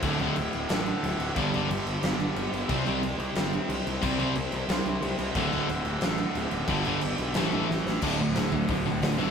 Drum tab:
CC |xxxxxxxx|xxxxxxxx|xxxxxxxx|xxxxxxxx|
HH |--------|--------|--------|--------|
SD |----o---|----o---|----o---|----o---|
BD |o-------|o-------|o-------|o-------|

CC |xxxxxxxx|xxxxxx--|x-------|
HH |--------|--------|--o-o-o-|
SD |----o---|----o-oo|--o---o-|
BD |o-------|o-------|o--oo---|